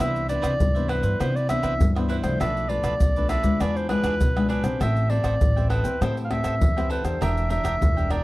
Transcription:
0.00 C2 C3 E3 B3 D4 E4 B4 C5 E5, pandeiro, tamborim, shaker, surdo
0.16 pandeiro, shaker
0.28 E3 B3 D4 E4 B4 C5 D5 E5, pandeiro, shaker
0.42 C2 E4 B4 C5 E5, pandeiro, tamborim, shaker, surdo
0.60 C2 G2, pandeiro, shaker, surdo
0.75 E3 B3 D4 B4 C5 E5, pandeiro, shaker
0.88 E4 B4 C5 E5, pandeiro, tamborim
1.02 G2 B4 C5 E5, pandeiro, shaker, surdo
1.20 C3 E3 B3 D4 E4 B4 C5 E5, pandeiro, tamborim, shaker, surdo
1.36 D5, pandeiro, shaker
1.49 E3 B3 D4 E4 B4 C5 E5, pandeiro, tamborim, shaker, surdo
1.62 C2 E4 B4 C5 E5, pandeiro, tamborim, shaker, surdo
1.81 G2, pandeiro, shaker, surdo
1.95 E3 B3 D4 B4 C5 E5, pandeiro, tamborim, shaker
2.09 E4 B4 C5 E5, pandeiro
2.23 C2 F3 A3 D4 C5, pandeiro, tamborim, shaker, surdo
2.40 B1 B2 F4 A4 B4 D5 E5, pandeiro, tamborim, shaker, surdo
2.57 pandeiro, shaker
2.69 F3 A3 D4 F4 A4 B4 D5, pandeiro
2.83 B1 F4 A4 B4 D5, pandeiro, tamborim, shaker, surdo
3.00 B1 B2, pandeiro, shaker, surdo
3.16 F3 A3 D4 A4 B4 D5, pandeiro, shaker
3.29 F4 A4 B4 D5 E5, pandeiro, tamborim, shaker
3.43 D2 G#3 D4 F4 A4 B4 D5, pandeiro, shaker, surdo
3.60 E2 E3 D4 G#4 B4 D5 E5, pandeiro, tamborim, shaker, surdo
3.76 C5, pandeiro, shaker
3.89 G#3 D4 F4 G#4 B4 E5, pandeiro, tamborim, surdo
4.03 E2 D4 G#4 B4 E5, pandeiro, tamborim, shaker, surdo
4.21 B1 B2, pandeiro, shaker, surdo
4.36 G#3 D4 F4 G#4 B4 E5, pandeiro, tamborim, shaker
4.49 D4 G#4 B4 E5, pandeiro
4.64 B1 C4 G4 B4 C5, pandeiro, tamborim, shaker, surdo
4.80 A1 A3 A4 C5 E5 G5, pandeiro, tamborim, shaker, surdo
4.96 pandeiro, shaker
5.09 C4 G4 A4 B4 C5 D5 E5 G5, pandeiro
5.24 A1 A4 C5 E5 G5, pandeiro, tamborim, shaker, surdo
5.41 A1 E3, pandeiro, shaker, surdo
5.56 C4 G4 B4 C5 E5 G5, pandeiro, shaker
5.70 A4 B4 C5 E5 G5, pandeiro, tamborim
5.84 E2 C4 G4 B4 C5 E5 G5, pandeiro, shaker, surdo
6.01 A2 A3 C4 G4 A4 B4 C5 E5 G5, pandeiro, tamborim, shaker, surdo
6.17 pandeiro, shaker
6.25 F5
6.30 C4 G4 A4 B4 C5 E5 G5, pandeiro, tamborim, surdo
6.44 A1 A4 C5 E5 G5, pandeiro, tamborim, shaker, surdo
6.61 E2 E3, pandeiro, shaker, surdo
6.77 C4 G4 B4 C5 E5 G5, pandeiro, tamborim, shaker
6.90 A4 B4 C5 E5 G5, pandeiro
7.04 E2 D4 G4 A#4 C5, pandeiro, tamborim, shaker, surdo
7.21 E1 E3 D4 A#4 E5 G5, pandeiro, tamborim, shaker, surdo
7.38 pandeiro, shaker
7.49 D4 G4 A#4 E5 G5, pandeiro, shaker
7.64 E1 D4 A#4 E5 G5, pandeiro, tamborim, shaker, surdo
7.81 E1 E3, pandeiro, shaker, surdo
7.97 D4 G4 A#4 E5 G5, pandeiro, shaker
8.10 D4 A#4 D5 E5 G5, pandeiro, tamborim

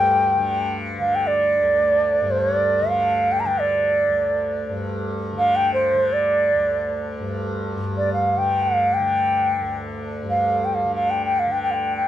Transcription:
Already playing: D2 G2 D3 G5
0.36 D3
0.99 D3 F5
1.15 G5
1.27 D5
1.60 D2
2.21 G2
2.31 C5
2.40 C#5
2.55 D5
2.82 D3
2.89 F5
3.32 G5
3.40 A#5
3.45 D3 G5
3.60 D5
4.08 D2
4.69 G2
5.33 D3
5.38 F5
5.56 G5
5.73 C5
5.94 D3
6.13 D5
6.54 D2
7.20 G2
7.77 G2
7.97 D5
8.13 F5
8.36 D3 G5
8.62 F5
8.94 G5
8.99 D3
9.60 D2
10.23 G2
10.29 F5
10.65 G5
10.74 F5
10.84 D3
10.95 F5
11.10 G5
11.25 G5
11.39 F5
11.47 D3
11.52 G5
11.63 G5
11.71 F5 G5
11.84 G5
11.97 G5

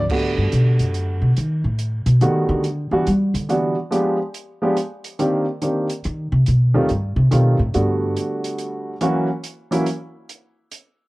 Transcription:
0.10 D3 A3 B3 F#4 G4, kick, crash
0.38 G2
0.52 B2, closed hi-hat
0.79 F#2, closed hi-hat
0.94 closed hi-hat
1.22 B2
1.37 D#3, closed hi-hat
1.64 A2
1.79 closed hi-hat
2.06 B2, closed hi-hat
2.21 D#3 G3 A3 B3 F#4, closed hi-hat
2.49 D3
2.64 closed hi-hat
2.91 E3 G3 B3 D4 F#4
3.07 G3, closed hi-hat
3.34 D3, closed hi-hat
3.49 E3 G3 B3 D4 F#4, closed hi-hat
3.91 F3 G#3 B3 D4 G4, closed hi-hat
4.34 closed hi-hat
4.62 F3 G#3 B3 D4 G4
4.77 closed hi-hat
5.04 closed hi-hat
5.19 D#3 A#3 C4 D4 G4, closed hi-hat
5.62 D#3 A#3 C4 D4 G4, closed hi-hat
5.89 closed hi-hat
6.04 D#3, closed hi-hat
6.32 C3
6.46 B2, closed hi-hat
6.74 D#2 D#3 G3 A3 C4 F4
6.89 G2, closed hi-hat
7.16 C3
7.31 B2 D#3 G3 A3 C4 F4, closed hi-hat
7.59 A2
7.74 G2 D3 G3 A3 B3 F#4, closed hi-hat
8.16 closed hi-hat
8.44 closed hi-hat
8.58 closed hi-hat
9.01 E3 F#3 A#3 C#4 F#4, closed hi-hat
9.44 closed hi-hat
9.71 E3 F#3 A#3 C#4 E4, closed hi-hat
9.86 closed hi-hat
10.29 closed hi-hat
10.72 closed hi-hat

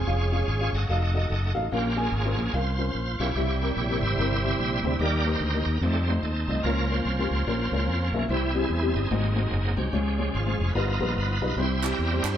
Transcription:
Already playing: G#4 C#5
0.07 F1 G#3 C#4 F4 G#4 F5
0.32 C#4 F4 G#4 F5
0.48 G#1 C#5
0.61 C#4 F4 G#4 F5
0.73 G1 F#4 A4 D#5
0.89 F1 A3 D#4 F#4 A4 F5
1.14 D#4 F#4 A4 D#5
1.30 F#1
1.54 A1 D#4 F#4 A4 F5
1.72 A#1 A#2 A#3 C#4 F4 G4 A#4 F5
1.96 C#4 F4 G#4 A#4 G#5
2.12 G#1
2.25 C#4 F4 A#4 C5
2.37 A#1 A#3 C#4 F4 G#4
2.54 C2 C#4 F4 A#4 C5 F5
2.79 C#4 F4 A#4 C5
2.95 A#1
3.19 B1 C#4 E4 F4 G4 A#4 C#5 F5
3.36 C2 C3 G3 C4 E4 G4 E5
3.62 C4 E4 G4 A#4
3.77 A#1 C#5
3.89 C4 E4 G4 A#4
4.01 G#1 G4 C5 E5
4.18 G1 C4 E4 G4 A#4
4.44 C4 E4 G4 E5
4.59 A#1
4.83 D2 C4 E4 G4 C5
4.99 D#2 D#3 G3 A#3 D#4 G4 A#4 D5 D#5
5.24 A#3 D#4 G4 C5
5.41 D2
5.54 A#3 D#4 G4 D#5
5.65 D#2 A#4
5.81 F2 G3 A3 C4 D#4 F4 A4 C5
6.07 A3 D#4 F4 C5
6.23 D#2 C4 D#4 A4
6.48 C2 A3 D#4 F4 D#5
6.63 C#2 C#3 F3 A#3 C#4 F4 A#4 C#5
6.87 A#3 C#4 F4 C5 C#5
7.05 C2
7.19 A#3 C#4 F4 G4
7.31 C#2
7.47 A#1 A#3 C#4 F4 C#5
7.72 C#2 A#3 C#4 F4 C#5
7.88 F2
8.13 B1 A#3 C#4 F4 E5
8.29 C2 C3 E3 G3 C4 E4 G4 C5
8.55 G3 C4 E4 G4 G#4
8.70 E2
8.82 G3 C4 E4 G4
8.95 G1 C4 D#4 G#4
9.11 G#1 G#2 F#3 G#3 A#3 C4 D#4 F#4 C5
9.36 G#3 D#4 F#4 C5
9.52 F#1
9.77 C2 G#3 C#4 D#4 F#4 G4 C5
9.93 C#2 C#3 F3 G#3 C#4 F4 C#5
10.18 G#3 C#4 F4 C#5
10.35 G#1 G#3 C#4 F4
10.46 G#3 C#4 F4 C5
10.59 F1
10.69 B4
10.74 G1 G2 F3 G3 B3 D#4 F4 A#4 B4
11.00 A#1 G3 D#4 F4 B4
11.17 G1 D#4 F4 B4
11.41 B1 G3 D#4 F4 B4
11.57 C2 C3 G3 C4 E4 G4 C5
11.82 G3 C4 E4 G4 A#4, clap
11.99 E2 A#4
12.11 G3 C4 E4 C5
12.24 G2 C5, clap

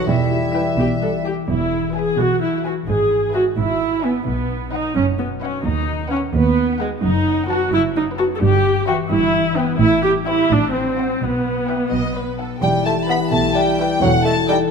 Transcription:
Already playing: B3 B4
0.07 E1 E2 E3 G3 E4 E5
0.29 G3 E4
0.52 G3 E4 B4 G5
0.77 B1 B2 G4 E5
0.99 G3 E4 A4 B4
1.23 G3 E4 G4 G5
1.48 E1 E2 E3 E4
1.71 G#4
1.95 B3 G#4 B4 E5 G#5
2.18 B1 B2 E4 F#4
2.41 E4 B4
2.64 F#4 G#4 B4 E5 G#5
2.87 G#1 G#2 G#4
3.11 E4
3.34 G#3 F#4 B4 E5 G#5
3.57 G#1 G#2 B3 E4
3.80 G#4
4.03 B3 E4 B4 E5 G#5
4.26 B1 B2 B3
4.50 D#4
4.73 F#3 D#4 B4 D#5 F#5
4.95 F#1 F#2 B3 C#4
5.19 B3 F#4
5.42 C#4 D#4 B4 D#5 F#5
5.65 D#2 D#3 D#4
5.88 F#4
6.11 B3 C#4 B4 F#5
6.34 D#2 B3 D#4
6.57 B4
6.80 G#3 F#4 B4 F#5
7.03 F#1 F#2 D#4
7.26 B3
7.49 F#3 F#4 B4 F#5 A5
7.72 F#1 F#2 A3 E4
7.94 D#4 F#4
8.17 B3 F#4 B4 F#5 A5
8.35 A4
8.41 G1 G2 G4
8.64 B3
8.87 E3 F#4 B4 E5 G5
9.10 G1 G2 G3 E4
9.34 E4
9.56 B3 B4 E5 G5
9.79 A1 A2 E4
10.03 G3 G4
10.26 C4 E4 C5 E5 G5
10.49 A1 A2 D4
10.72 F#3 C4
10.96 C4 F#4 C5 F#5
11.20 B1 B2 B3
11.44 B3
11.68 E4 G4 B4 E5 G5
11.91 B1 B2 D#5
12.15 B3 B4
12.38 D#4 F#4 A4 F#5
12.62 E1 E2 E3 G3 E4 G4 G5
12.85 A3 E4 E5 A5
13.09 B3 E4 B4 E5 B5
13.32 B1 B2 A3 E5 A5
13.55 G3 E4 B4 E5 G5
13.78 E4 G4 B4 E5
14.02 E1 E2 E3 F#3 A4 F#5
14.24 A3 D#4 A4 D#5 A5
14.48 G3 D#4 A4 B4 D#5 G5

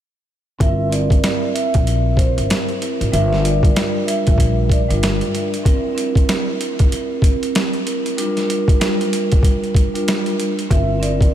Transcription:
0.59 G1 C4 E4 A#4 E5, kick, closed hi-hat
0.90 C4 E4 A#4 D5, closed hi-hat
1.10 kick, closed hi-hat
1.24 snare, closed hi-hat
1.54 E5, closed hi-hat
1.74 A#1, kick, closed hi-hat
1.87 closed hi-hat
2.16 C5, kick, closed hi-hat
2.37 G1, closed hi-hat
2.50 snare, closed hi-hat
2.69 closed hi-hat
2.80 C4 E4 A#4, closed hi-hat
3.01 G#1, closed hi-hat
3.12 G1 G3 D4 F4 A#4 E5, closed hi-hat
3.33 snare
3.45 D5, closed hi-hat
3.63 kick, closed hi-hat
3.75 G3 D4 F4 A#4, snare, closed hi-hat
4.07 E5, closed hi-hat
4.27 A#1, kick, closed hi-hat
4.38 kick, closed hi-hat
4.69 D5, kick, closed hi-hat
4.89 G1 G3 D4 F4 A#4, closed hi-hat
5.03 snare, closed hi-hat
5.21 closed hi-hat
5.35 closed hi-hat
5.54 closed hi-hat
5.64 C4 E4 A#4, kick, closed hi-hat
5.95 C4 E4 A#4, closed hi-hat
6.15 kick, closed hi-hat
6.29 snare, closed hi-hat
6.61 closed hi-hat
6.79 kick, closed hi-hat
6.92 closed hi-hat
7.22 kick, closed hi-hat
7.43 closed hi-hat
7.55 snare, closed hi-hat
7.73 closed hi-hat
7.85 C4 E4 A#4, closed hi-hat
8.06 closed hi-hat
8.17 G3 D4 F4 A#4, closed hi-hat
8.37 snare, closed hi-hat
8.50 closed hi-hat
8.68 kick, closed hi-hat
8.80 G3 D4 F4 A#4, snare, closed hi-hat
9.01 closed hi-hat
9.13 closed hi-hat
9.32 kick, closed hi-hat
9.43 kick, closed hi-hat
9.64 closed hi-hat
9.75 kick, closed hi-hat
9.94 G3 D4 F4 A#4, closed hi-hat
10.08 snare, closed hi-hat
10.26 closed hi-hat
10.40 closed hi-hat
10.59 closed hi-hat
10.69 G1 C4 E4 A#4 E5, kick, closed hi-hat
11.00 C4 E4 A#4 D5, closed hi-hat
11.21 kick, closed hi-hat

